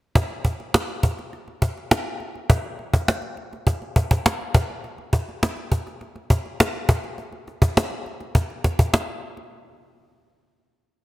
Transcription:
0.15 cajon bass loud
0.30 cajon slap soft
0.45 cajon bass medium
0.60 cajon slap soft
0.74 cajon slap loud
0.88 cajon slap soft
1.03 cajon bass medium
1.18 cajon slap soft
1.33 cajon slap medium
1.48 cajon slap soft
1.62 cajon bass medium
1.77 cajon slap soft
1.91 cajon slap loud
2.07 cajon slap soft
2.20 cajon slap soft
2.35 cajon slap soft
2.50 cajon bass loud
2.64 cajon slap soft
2.79 cajon slap soft
2.94 cajon bass medium
2.94 cajon slap soft
3.08 cajon slap medium
3.22 cajon slap soft
3.37 cajon slap soft
3.53 cajon slap soft
3.67 cajon bass medium
3.67 cajon slap soft
3.82 cajon slap soft
3.96 cajon bass medium
4.11 cajon bass medium
4.26 cajon slap loud
4.41 cajon slap soft
4.54 cajon bass loud
4.70 cajon slap soft
4.84 cajon slap soft
4.98 cajon slap soft
5.13 cajon bass medium
5.29 cajon slap soft
5.43 cajon slap medium
5.57 cajon slap soft
5.72 cajon bass medium
5.87 cajon slap soft
6.01 cajon slap medium
6.16 cajon slap soft
6.30 cajon bass medium
6.46 cajon slap soft
6.60 cajon slap loud
6.75 cajon slap soft
6.89 cajon bass medium
7.04 cajon slap soft
7.18 cajon slap soft
7.32 cajon slap soft
7.47 cajon slap soft
7.62 cajon bass medium
7.62 cajon slap soft
7.77 cajon slap loud
7.91 cajon slap soft
8.06 cajon slap soft
8.20 cajon slap soft
8.35 cajon bass medium
8.35 cajon slap soft
8.50 cajon slap soft
8.64 cajon bass medium
8.64 cajon slap soft
8.79 cajon bass medium
8.94 cajon slap medium
9.08 cajon slap soft
9.37 cajon slap soft

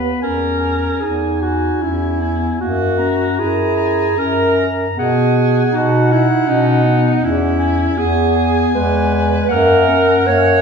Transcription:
0.00 0.14 D#2 soft
0.00 0.25 B3 soft
0.00 0.22 B4 medium
0.00 0.21 B5 soft
0.22 0.92 E2 soft
0.22 1.04 C#4 medium
0.22 1.02 A#4 medium
0.22 0.59 G#5 soft
0.60 1.39 G#5 soft
1.00 1.72 E2 medium
1.00 1.83 D#4 soft
1.00 1.43 G#4 medium
1.41 1.83 F#4 medium
1.41 2.19 G#5 soft
1.81 2.51 E2 medium
1.81 2.22 C#4 soft
1.81 2.60 E4 medium
2.21 2.60 B3 soft
2.21 2.60 G#5 soft
2.60 3.29 F#2 medium
2.60 3.00 A#3 medium
2.60 3.40 F#4 medium
2.98 3.40 C#4 soft
2.98 3.76 A#5 soft
3.39 4.08 F#2 medium
3.39 4.16 E4 medium
3.39 4.20 G#4 medium
3.77 4.55 A#5 soft
4.17 4.87 F#2 medium
4.17 4.68 C#4 medium
4.17 4.69 A#4 medium
4.58 4.96 A#5 soft
4.96 5.64 B2 medium
4.96 5.68 B3 medium
4.96 5.77 G#4 medium
4.96 5.35 F#5 soft
5.37 6.09 F#5 soft
5.72 6.31 B2 medium
5.72 6.49 D#4 medium
5.72 6.14 F#4 medium
6.12 6.50 E4 medium
6.12 6.84 F#5 medium
6.47 7.13 B2 medium
6.47 6.85 C#4 medium
6.47 7.26 D#4 medium
6.83 7.24 B3 medium
6.83 7.22 F#5 medium
7.22 7.89 E2 medium
7.22 7.99 C#4 medium
7.22 7.99 E4 medium
7.59 8.34 G#5 medium
7.97 8.66 E2 medium
7.97 8.77 B3 medium
7.97 8.74 G#4 medium
8.36 9.11 G#5 medium
8.75 9.41 E2 medium
8.75 9.50 G#3 medium
8.75 9.53 B4 medium
9.14 9.48 G#5 medium
9.48 10.17 F#2 medium
9.48 9.90 A#3 medium
9.48 10.28 A#4 medium
9.48 9.86 F#5 medium
9.89 10.27 C#4 medium
9.89 10.62 F#5 medium
10.26 10.62 F#2 medium
10.26 10.62 A#3 medium
10.26 10.62 C#5 loud

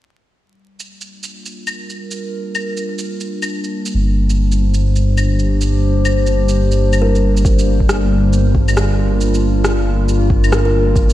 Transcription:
0.44 11.13 G3 medium
0.79 11.13 A#3 medium
0.79 shaker medium
0.88 5.17 F4 medium
1.01 11.13 D4 medium
1.01 shaker soft
1.23 shaker medium
1.46 shaker soft
1.54 4.37 A#4 medium
1.67 claves soft
1.67 shaker soft
1.90 shaker soft
2.11 shaker medium
2.55 claves medium
2.55 shaker medium
2.77 shaker soft
2.98 shaker medium
3.20 shaker soft
3.42 claves soft
3.42 shaker medium
3.64 shaker soft
3.86 shaker medium
3.94 7.43 G1 medium
4.23 8.59 C5 medium
4.30 shaker medium
4.52 shaker soft
4.74 shaker medium
4.96 shaker soft
5.02 8.75 G4 medium
5.17 claves soft
5.17 shaker medium
5.39 shaker soft
5.61 shaker medium
6.05 claves medium
6.05 shaker medium
6.27 shaker soft
6.49 shaker medium
6.71 shaker soft
6.93 claves soft
6.93 shaker medium
7.02 7.13 A#4 medium
7.15 shaker soft
7.37 shaker medium
7.45 11.13 G1 medium
7.45 kick loud
7.45 shaker medium
7.59 shaker medium
7.74 11.13 A#4 medium
7.80 kick medium
7.89 cross-stick loud
7.89 shaker medium
8.33 shaker medium
8.53 11.13 F4 medium
8.53 kick medium
8.68 claves medium
8.68 shaker medium
8.77 cross-stick loud
8.77 shaker medium
9.21 shaker medium
9.35 shaker medium
9.64 cross-stick loud
9.64 shaker medium
10.09 shaker medium
10.30 kick loud
10.44 claves soft
10.44 shaker medium
10.52 10.63 A#4 medium
10.52 cross-stick loud
10.52 shaker medium
10.65 10.96 A#4 medium
10.96 kick loud
10.96 shaker medium
11.10 shaker medium

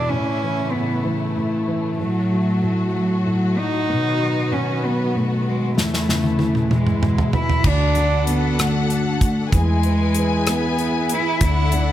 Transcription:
0.00 0.13 E2 soft
0.00 0.13 B2 soft
0.00 0.13 E3 soft
0.00 1.95 E3 medium
0.00 0.11 D4 medium
0.00 1.95 E4 medium
0.09 0.73 A2 soft
0.09 1.97 C#3 medium
0.09 3.83 A3 soft
0.09 0.72 C#4 medium
0.44 1.03 E3 soft
0.71 1.35 A2 soft
0.71 1.05 B3 medium
1.04 1.66 E3 soft
1.04 1.67 A3 medium
1.37 1.97 A2 soft
1.68 1.98 E3 soft
1.98 3.85 A2 medium
1.98 2.61 A2 soft
1.98 5.72 F#3 medium
1.98 2.89 F#3 medium
1.98 5.72 F#4 medium
2.31 2.93 F#3 soft
2.62 3.24 A2 soft
2.95 3.55 F#3 soft
2.95 3.60 F#3 medium
3.26 3.86 A2 soft
3.57 3.87 F#3 soft
3.57 4.54 D#4 medium
3.88 4.50 B2 soft
3.88 5.75 D#3 medium
3.88 5.75 B3 medium
4.20 4.82 F#3 soft
4.51 5.13 B2 soft
4.51 4.87 C#4 medium
4.84 5.44 F#3 soft
4.84 5.19 B3 medium
5.15 5.75 B2 soft
5.15 5.51 A3 medium
5.45 5.76 F#3 soft
5.49 5.78 G#3 medium
5.76 6.70 E2 medium
5.76 6.68 E2 soft
5.76 6.69 C#3 medium
5.76 7.63 E3 medium
5.76 6.70 A3 medium
5.76 6.76 A3 medium
5.76 6.69 E4 medium
5.76 snare soft
5.94 snare soft
6.08 6.69 C#3 soft
6.08 snare soft
6.24 high tom soft
6.39 6.70 E3 soft
6.39 high tom medium
6.55 mid tom soft
6.70 7.62 E2 soft
6.70 7.63 B2 medium
6.70 7.64 G#3 soft
6.70 7.64 E4 medium
6.70 mid tom medium
6.75 7.35 G#3 medium
6.87 mid tom soft
7.02 7.63 B2 soft
7.02 mid tom medium
7.18 floor tom medium
7.33 7.64 E3 soft
7.33 7.69 E4 medium
7.33 floor tom medium
7.50 floor tom medium
7.64 9.49 D2 medium
7.64 7.95 D3 soft
7.64 9.51 D4 medium
7.64 8.28 D4 medium
7.64 9.51 F#4 medium
7.64 9.51 A4 medium
7.64 9.51 F#5 medium
7.64 kick medium
7.64 crash medium
7.95 8.28 D3 soft
7.95 closed hi-hat soft
8.27 8.58 D3 soft
8.27 8.60 B3 medium
8.27 closed hi-hat medium
8.59 9.51 D3 soft
8.59 9.20 A3 medium
8.59 cross-stick medium
8.59 closed hi-hat medium
8.90 closed hi-hat soft
9.21 9.50 A3 medium
9.21 kick medium
9.21 closed hi-hat medium
9.52 11.37 E2 medium
9.52 9.84 E3 medium
9.52 10.51 G#3 medium
9.52 11.92 E4 medium
9.52 11.40 G#4 medium
9.52 11.39 B4 medium
9.52 11.39 G#5 medium
9.52 kick medium
9.52 closed hi-hat medium
9.83 10.16 E3 soft
9.83 closed hi-hat soft
10.15 10.47 E3 soft
10.15 closed hi-hat medium
10.47 11.39 E3 soft
10.47 11.15 B3 medium
10.47 cross-stick medium
10.47 closed hi-hat medium
10.79 closed hi-hat soft
11.09 closed hi-hat medium
11.14 11.43 E4 medium
11.39 11.92 D2 medium
11.39 11.72 D3 medium
11.39 11.92 A4 medium
11.39 11.92 D5 medium
11.39 11.92 F#5 medium
11.39 kick medium
11.39 closed hi-hat medium
11.43 11.92 E4 medium
11.72 11.92 D3 soft
11.72 closed hi-hat soft

